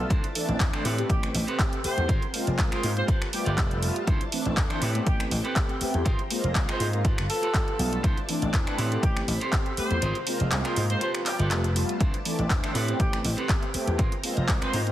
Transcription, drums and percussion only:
0.10 kick, closed hi-hat
0.24 closed hi-hat
0.35 open hi-hat
0.49 closed hi-hat
0.60 kick, clap, closed hi-hat
0.73 finger snap, closed hi-hat
0.85 open hi-hat
0.98 closed hi-hat
1.10 kick, closed hi-hat
1.23 finger snap, closed hi-hat
1.35 open hi-hat
1.48 closed hi-hat
1.59 kick, clap, closed hi-hat
1.73 closed hi-hat
1.84 open hi-hat
1.98 closed hi-hat
2.09 kick, closed hi-hat
2.22 closed hi-hat
2.34 open hi-hat
2.47 closed hi-hat
2.59 kick, clap, closed hi-hat
2.72 finger snap, closed hi-hat
2.83 open hi-hat
2.97 closed hi-hat
3.08 kick, closed hi-hat
3.22 finger snap, closed hi-hat
3.33 open hi-hat
3.46 closed hi-hat
3.58 kick, clap, closed hi-hat
3.71 closed hi-hat
3.82 open hi-hat
3.96 closed hi-hat
4.07 kick, closed hi-hat
4.21 closed hi-hat
4.32 open hi-hat
4.46 closed hi-hat
4.57 kick, clap, closed hi-hat
4.70 finger snap, closed hi-hat
4.82 open hi-hat
4.95 closed hi-hat
5.07 kick, closed hi-hat
5.20 finger snap, closed hi-hat
5.31 open hi-hat
5.45 closed hi-hat
5.56 kick, clap, closed hi-hat
5.69 closed hi-hat
5.81 open hi-hat
5.94 closed hi-hat
6.06 kick, closed hi-hat
6.19 closed hi-hat
6.30 open hi-hat
6.44 closed hi-hat
6.55 kick, clap, closed hi-hat
6.69 finger snap, closed hi-hat
6.80 open hi-hat
6.93 closed hi-hat
7.05 kick, closed hi-hat
7.18 finger snap, closed hi-hat
7.30 open hi-hat
7.43 closed hi-hat
7.54 kick, clap, closed hi-hat
7.68 closed hi-hat
7.79 open hi-hat
7.93 closed hi-hat
8.04 kick, closed hi-hat
8.17 closed hi-hat
8.29 open hi-hat
8.42 closed hi-hat
8.53 kick, clap, closed hi-hat
8.67 finger snap, closed hi-hat
8.78 open hi-hat
8.92 closed hi-hat
9.03 kick, closed hi-hat
9.17 finger snap, closed hi-hat
9.28 open hi-hat
9.41 closed hi-hat
9.53 kick, clap, closed hi-hat
9.66 closed hi-hat
9.77 open hi-hat
9.91 closed hi-hat
10.02 closed hi-hat
10.15 closed hi-hat
10.27 open hi-hat
10.40 closed hi-hat
10.52 clap, closed hi-hat
10.65 finger snap, closed hi-hat
10.76 open hi-hat
10.90 closed hi-hat
11.01 closed hi-hat
11.15 finger snap, closed hi-hat
11.26 clap, open hi-hat
11.39 closed hi-hat
11.51 clap, closed hi-hat
11.64 closed hi-hat
11.76 open hi-hat
11.89 closed hi-hat
12.00 kick, closed hi-hat
12.14 closed hi-hat
12.25 open hi-hat
12.39 closed hi-hat
12.50 kick, clap, closed hi-hat
12.64 finger snap, closed hi-hat
12.75 open hi-hat
12.88 closed hi-hat
13.00 kick, closed hi-hat
13.13 finger snap, closed hi-hat
13.25 open hi-hat
13.38 closed hi-hat
13.49 kick, clap, closed hi-hat
13.63 closed hi-hat
13.74 open hi-hat
13.87 closed hi-hat
13.99 kick, closed hi-hat
14.12 closed hi-hat
14.23 open hi-hat
14.37 closed hi-hat
14.48 kick, clap, closed hi-hat
14.62 finger snap, closed hi-hat
14.73 open hi-hat
14.87 closed hi-hat

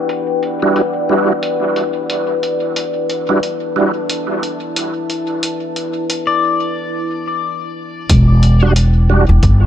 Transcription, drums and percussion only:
0.09 closed hi-hat
0.43 closed hi-hat
0.76 closed hi-hat
1.43 closed hi-hat
1.76 closed hi-hat
2.10 closed hi-hat
2.43 closed hi-hat
2.76 closed hi-hat
3.10 closed hi-hat
3.43 closed hi-hat
4.10 closed hi-hat
4.43 closed hi-hat
4.76 closed hi-hat
5.10 closed hi-hat
5.43 closed hi-hat
5.76 closed hi-hat
6.10 closed hi-hat
8.10 kick, closed hi-hat
8.43 closed hi-hat
8.76 closed hi-hat
9.43 kick, closed hi-hat

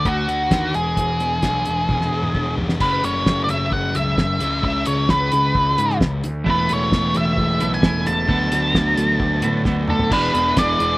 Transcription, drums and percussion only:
0.05 kick, closed hi-hat
0.29 closed hi-hat
0.51 kick, snare, closed hi-hat
0.74 closed hi-hat
0.97 kick, closed hi-hat
1.20 closed hi-hat
1.42 kick, snare, closed hi-hat
1.65 closed hi-hat
1.89 kick, high tom
2.01 snare
2.23 mid tom
2.35 kick
2.58 floor tom
2.69 snare
2.80 kick, crash
3.04 closed hi-hat
3.26 kick, snare
3.49 closed hi-hat
3.72 kick
3.95 closed hi-hat
4.18 kick, snare
4.40 closed hi-hat
4.63 kick
4.85 closed hi-hat
5.09 kick, snare
5.32 closed hi-hat
5.55 kick
5.78 closed hi-hat
5.90 snare
6.01 kick, snare
6.24 closed hi-hat
6.46 kick
6.69 closed hi-hat
6.92 kick, snare
7.14 closed hi-hat
7.37 kick
7.60 closed hi-hat
7.72 snare
7.83 kick, snare
8.06 closed hi-hat
8.29 kick
8.52 closed hi-hat
8.74 kick, snare
8.97 closed hi-hat
9.20 kick
9.42 closed hi-hat
9.65 kick, snare
9.88 mid tom
9.99 floor tom
10.11 kick, crash
10.35 closed hi-hat
10.57 kick, snare, closed hi-hat
10.80 closed hi-hat

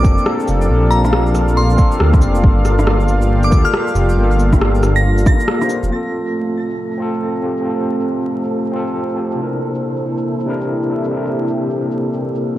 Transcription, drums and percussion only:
0.04 kick, cabasa
0.18 shaker
0.26 cross-stick
0.40 shaker
0.48 cabasa
0.62 shaker
0.92 cabasa
1.05 cross-stick, shaker
1.13 cross-stick
1.27 shaker
1.35 cross-stick, cabasa
1.49 shaker
1.70 shaker
1.78 kick, cabasa
1.92 shaker
2.00 cross-stick
2.14 kick, cross-stick, shaker
2.21 cabasa
2.35 shaker
2.44 kick
2.65 cross-stick, cabasa
2.79 cross-stick, shaker
2.87 cross-stick
3.00 shaker
3.08 cabasa
3.22 shaker
3.43 cabasa, shaker
3.52 kick, cabasa
3.65 shaker
3.74 cross-stick
3.87 shaker
3.96 cabasa
4.09 shaker
4.31 shaker
4.39 cabasa
4.53 kick, cross-stick, shaker
4.61 cross-stick
4.75 shaker
4.83 cross-stick, cabasa
4.96 shaker
5.18 cabasa, shaker
5.26 kick, cross-stick, cabasa
5.40 shaker
5.48 cross-stick
5.62 cross-stick, shaker
5.69 cabasa
5.83 shaker
6.27 shaker
6.49 shaker
6.70 shaker
6.92 shaker
7.14 shaker
7.36 shaker
7.57 shaker
8.01 shaker
8.22 shaker
8.44 shaker
8.66 shaker
8.87 shaker
9.09 shaker
9.31 shaker
9.74 shaker
9.96 shaker
10.18 shaker
10.40 shaker
10.61 shaker
10.83 shaker
11.04 shaker
11.26 shaker
11.48 shaker
11.70 shaker
11.91 shaker
12.13 shaker
12.35 shaker

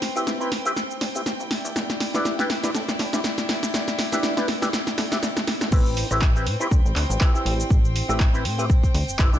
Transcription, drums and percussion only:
0.02 snare, open hi-hat
0.16 shaker
0.27 snare, shaker
0.41 shaker
0.52 snare, open hi-hat
0.66 shaker
0.76 snare, shaker
0.91 shaker
1.01 snare, open hi-hat
1.15 shaker
1.26 snare, shaker
1.40 shaker
1.51 snare, open hi-hat
1.65 shaker
1.76 snare, shaker
1.90 snare, shaker
2.00 snare, open hi-hat
2.14 snare, shaker
2.25 snare, shaker
2.39 snare, shaker
2.50 snare, open hi-hat
2.64 snare, shaker
2.75 snare, shaker
2.89 snare, shaker
2.99 snare, open hi-hat
3.13 snare, shaker
3.24 snare, shaker
3.38 snare, shaker
3.49 snare, open hi-hat
3.63 snare, shaker
3.74 snare, shaker
3.88 snare, shaker
3.99 snare, open hi-hat
4.12 snare, shaker
4.23 snare, shaker
4.37 snare, shaker
4.48 snare, open hi-hat
4.62 snare, shaker
4.73 snare, shaker
4.87 snare, shaker
4.98 snare, open hi-hat
5.12 snare, shaker
5.23 snare, shaker
5.37 snare, shaker
5.47 snare, open hi-hat
5.61 snare, shaker
5.72 kick, crash, shaker
5.86 shaker
5.97 open hi-hat
6.11 cross-stick, shaker
6.22 kick, clap, shaker
6.36 shaker
6.47 open hi-hat
6.61 shaker
6.71 kick, cross-stick, shaker
6.86 shaker
6.96 clap, open hi-hat
7.11 shaker
7.21 kick, clap, shaker
7.35 shaker
7.46 open hi-hat
7.60 shaker
7.70 kick, shaker
7.85 shaker
7.96 open hi-hat
8.10 cross-stick, shaker
8.20 kick, clap, shaker
8.35 shaker
8.45 open hi-hat
8.59 shaker
8.70 kick, cross-stick, shaker
8.84 kick, shaker
8.95 open hi-hat
9.09 shaker
9.19 kick, clap, shaker
9.34 shaker

